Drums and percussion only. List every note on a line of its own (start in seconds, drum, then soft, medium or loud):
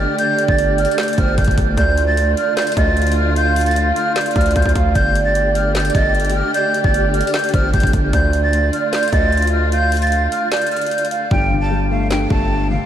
0.19 closed hi-hat medium
0.39 closed hi-hat medium
0.48 kick medium
0.58 closed hi-hat medium
0.78 closed hi-hat soft
0.85 closed hi-hat medium
0.91 closed hi-hat medium
0.98 snare loud
0.98 clap medium
0.98 closed hi-hat medium
1.03 closed hi-hat medium
1.08 closed hi-hat medium
1.13 closed hi-hat medium
1.18 kick loud
1.18 closed hi-hat medium
1.38 kick medium
1.38 closed hi-hat medium
1.44 kick medium
1.44 closed hi-hat medium
1.51 closed hi-hat medium
1.58 kick loud
1.58 closed hi-hat medium
1.77 kick loud
1.77 closed hi-hat medium
1.98 closed hi-hat medium
2.17 closed hi-hat medium
2.37 closed hi-hat medium
2.57 snare loud
2.57 clap medium
2.57 closed hi-hat soft
2.62 closed hi-hat medium
2.67 closed hi-hat medium
2.72 closed hi-hat medium
2.77 kick loud
2.77 closed hi-hat medium
2.97 closed hi-hat soft
3.02 closed hi-hat medium
3.07 closed hi-hat medium
3.12 closed hi-hat medium
3.36 closed hi-hat medium
3.56 closed hi-hat medium
3.56 open hi-hat medium
3.61 closed hi-hat medium
3.66 closed hi-hat medium
3.71 closed hi-hat soft
3.76 closed hi-hat medium
3.96 closed hi-hat medium
4.16 snare loud
4.16 clap medium
4.16 closed hi-hat medium
4.21 closed hi-hat medium
4.26 closed hi-hat medium
4.31 closed hi-hat soft
4.36 kick loud
4.36 closed hi-hat soft
4.41 closed hi-hat medium
4.46 closed hi-hat medium
4.51 closed hi-hat medium
4.56 kick medium
4.56 closed hi-hat medium
4.62 kick medium
4.62 closed hi-hat medium
4.69 closed hi-hat medium
4.75 kick loud
4.75 closed hi-hat medium
4.95 kick loud
4.95 closed hi-hat medium
5.15 closed hi-hat medium
5.35 closed hi-hat medium
5.55 closed hi-hat medium
5.75 snare loud
5.75 clap loud
5.75 closed hi-hat soft
5.80 closed hi-hat medium
5.85 closed hi-hat medium
5.90 closed hi-hat medium
5.95 kick loud
5.95 closed hi-hat medium
6.15 closed hi-hat soft
6.20 closed hi-hat medium
6.25 closed hi-hat medium
6.30 closed hi-hat medium
6.54 closed hi-hat medium
6.74 closed hi-hat medium
6.84 kick medium
6.94 closed hi-hat medium
7.14 closed hi-hat soft
7.21 closed hi-hat medium
7.27 closed hi-hat medium
7.34 snare loud
7.34 clap medium
7.34 closed hi-hat medium
7.39 closed hi-hat medium
7.44 closed hi-hat medium
7.49 closed hi-hat medium
7.54 kick loud
7.54 closed hi-hat medium
7.74 kick medium
7.74 closed hi-hat medium
7.80 kick medium
7.80 closed hi-hat medium
7.87 closed hi-hat medium
7.93 kick loud
7.93 closed hi-hat medium
8.13 kick loud
8.13 closed hi-hat medium
8.33 closed hi-hat medium
8.53 closed hi-hat medium
8.73 closed hi-hat medium
8.93 snare loud
8.93 clap medium
8.93 closed hi-hat soft
8.98 closed hi-hat medium
9.03 closed hi-hat medium
9.08 closed hi-hat medium
9.13 kick loud
9.13 closed hi-hat medium
9.32 closed hi-hat soft
9.37 closed hi-hat medium
9.42 closed hi-hat medium
9.47 closed hi-hat medium
9.72 closed hi-hat medium
9.92 closed hi-hat medium
9.92 open hi-hat medium
9.97 closed hi-hat medium
10.02 closed hi-hat medium
10.07 closed hi-hat soft
10.12 closed hi-hat medium
10.32 closed hi-hat medium
10.52 snare loud
10.52 clap loud
10.52 closed hi-hat medium
10.57 closed hi-hat medium
10.62 closed hi-hat medium
10.67 closed hi-hat medium
10.72 closed hi-hat soft
10.77 closed hi-hat soft
10.81 closed hi-hat medium
10.86 closed hi-hat medium
10.91 closed hi-hat medium
10.98 closed hi-hat medium
11.05 closed hi-hat medium
11.11 closed hi-hat medium
11.31 kick loud
12.11 snare loud
12.11 clap medium
12.30 kick loud